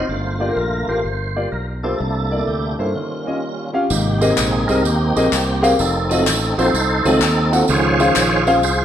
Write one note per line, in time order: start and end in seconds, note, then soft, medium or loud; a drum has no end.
0.00 0.10 F4 medium
0.00 0.59 C5 medium
0.09 0.50 G1 medium
0.09 0.84 G2 soft
0.09 0.87 A3 soft
0.09 0.87 A#3 soft
0.09 0.88 F4 medium
0.40 0.45 A#3 medium
0.40 0.45 F4 medium
0.40 0.45 G4 medium
0.40 0.45 D5 medium
0.48 0.59 A#3 medium
0.48 0.59 F4 medium
0.48 0.59 G4 medium
0.48 0.59 A#4 medium
0.56 0.83 A#1 medium
0.56 0.89 A#4 medium
0.88 1.02 A1 medium
0.88 1.03 A3 soft
0.88 0.97 A#3 medium
0.88 1.03 A#3 soft
0.88 0.97 F4 medium
0.88 1.03 F4 medium
0.88 0.98 G4 medium
0.88 0.98 A#4 medium
0.88 1.49 C5 medium
1.05 1.45 G1 medium
1.36 1.45 A#3 medium
1.36 1.45 F4 medium
1.36 1.45 G4 medium
1.36 1.46 D5 medium
1.52 1.93 B1 medium
1.52 1.66 A#4 medium
1.83 1.93 A#3 medium
1.83 1.98 D4 medium
1.83 1.98 E4 medium
1.83 1.93 F4 medium
1.83 1.93 G4 medium
1.83 2.44 A4 medium
1.83 1.93 C5 medium
1.98 2.41 C2 medium
1.98 2.75 C3 medium
1.98 2.74 A3 soft
1.98 2.74 A#3 soft
1.98 2.74 D4 soft
1.98 2.75 E4 medium
2.31 2.36 A#3 medium
2.31 2.36 E4 medium
2.31 2.36 A4 medium
2.31 2.36 D5 medium
2.39 2.49 A#3 medium
2.39 2.49 E4 medium
2.39 2.49 A4 medium
2.39 2.49 D5 medium
2.48 2.74 D2 medium
2.48 2.77 G4 medium
2.78 2.93 G2 medium
2.78 2.88 A#3 medium
2.78 3.70 A#3 soft
2.78 2.95 C#4 soft
2.78 2.88 E4 medium
2.78 2.95 F4 medium
2.78 2.88 A4 medium
2.78 2.88 C5 medium
2.95 3.70 D#3 medium
2.95 3.70 G3 soft
2.95 3.70 C#4 soft
2.95 3.71 F4 soft
3.27 3.36 C#4 medium
3.27 3.36 F4 medium
3.27 3.36 G4 medium
3.27 3.36 D#5 medium
3.73 3.83 C#4 medium
3.73 3.83 F4 medium
3.73 3.83 G4 medium
3.73 3.83 F5 medium
3.90 4.31 G#1 loud
3.90 4.65 G#2 medium
3.90 4.65 C3 medium
3.90 4.65 A#3 medium
3.90 4.21 G4 medium
3.90 tambourine medium
4.21 4.30 C4 medium
4.21 4.30 G4 medium
4.21 4.31 G#4 medium
4.21 4.31 A#4 medium
4.21 4.31 D#5 medium
4.21 tambourine medium
4.30 4.84 C4 medium
4.30 5.20 D#4 medium
4.30 4.70 G#4 medium
4.38 4.64 A#1 medium
4.38 clap loud
4.38 tambourine loud
4.68 4.85 C2 medium
4.68 4.78 C4 medium
4.68 4.78 G4 medium
4.68 4.78 G#4 medium
4.68 4.85 A#4 medium
4.68 4.78 A#4 medium
4.68 4.78 D#5 medium
4.68 tambourine medium
4.85 5.12 D#2 loud
4.85 5.76 A#3 medium
4.85 5.76 C4 medium
4.85 5.76 G4 medium
4.85 tambourine medium
5.16 5.30 A#1 medium
5.16 5.25 C4 medium
5.16 5.25 G4 medium
5.16 5.25 G#4 medium
5.16 5.26 A#4 medium
5.16 5.26 D#5 medium
5.16 tambourine medium
5.32 5.73 C2 medium
5.32 clap medium
5.32 tambourine medium
5.62 5.72 C4 medium
5.62 5.72 G4 medium
5.62 5.72 G#4 medium
5.62 5.72 A#4 medium
5.62 5.72 F5 loud
5.62 tambourine medium
5.79 6.26 F1 loud
5.79 6.70 C4 medium
5.79 6.57 D#4 medium
5.79 6.54 A4 medium
5.79 tambourine medium
6.10 6.37 D#3 medium
6.10 6.38 F#3 medium
6.10 6.38 A3 medium
6.10 6.20 C4 medium
6.10 6.20 F4 medium
6.10 6.20 F#4 medium
6.10 6.20 A4 medium
6.10 6.20 D#5 medium
6.10 tambourine medium
6.26 6.53 A1 medium
6.26 clap loud
6.26 tambourine loud
6.58 6.72 A#1 medium
6.58 6.67 C4 medium
6.58 7.05 D#4 medium
6.58 6.67 F4 medium
6.58 6.67 F#4 medium
6.58 6.67 A4 medium
6.58 7.06 A4 medium
6.58 6.67 C5 medium
6.58 7.07 C5 loud
6.58 tambourine soft
6.74 7.00 C2 loud
6.74 tambourine medium
7.05 7.19 C#2 loud
7.05 7.20 D#3 medium
7.05 7.20 F#3 soft
7.05 7.20 A3 medium
7.05 7.14 C4 medium
7.05 7.66 C4 medium
7.05 7.65 D#4 medium
7.05 7.14 F4 medium
7.05 7.15 F#4 medium
7.05 7.15 A4 medium
7.05 7.50 A4 loud
7.05 7.15 D#5 medium
7.05 tambourine medium
7.21 7.62 D#2 loud
7.21 clap medium
7.21 tambourine medium
7.52 7.61 C4 medium
7.52 7.62 F4 medium
7.52 7.62 F#4 medium
7.52 7.62 A4 medium
7.52 7.62 F#5 medium
7.52 tambourine medium
7.68 8.09 C#2 loud
7.68 8.43 C#3 medium
7.68 8.43 D#3 medium
7.68 8.44 F3 medium
7.68 8.60 F4 medium
7.68 8.60 G#4 medium
7.68 8.44 C5 medium
7.68 8.44 C#5 loud
7.68 tambourine medium
8.00 8.09 C#4 medium
8.00 8.09 F4 medium
8.00 8.09 G#4 medium
8.00 8.09 C5 medium
8.00 8.09 F5 medium
8.00 tambourine medium
8.16 8.63 A#1 medium
8.16 clap loud
8.16 tambourine loud
8.47 8.56 C#4 medium
8.47 8.56 F4 medium
8.47 8.56 G#4 medium
8.47 8.56 C5 medium
8.47 8.56 F5 loud
8.47 tambourine medium
8.63 8.85 C2 loud
8.63 8.85 F4 medium
8.63 8.85 G#4 medium
8.63 8.85 C5 loud
8.63 tambourine medium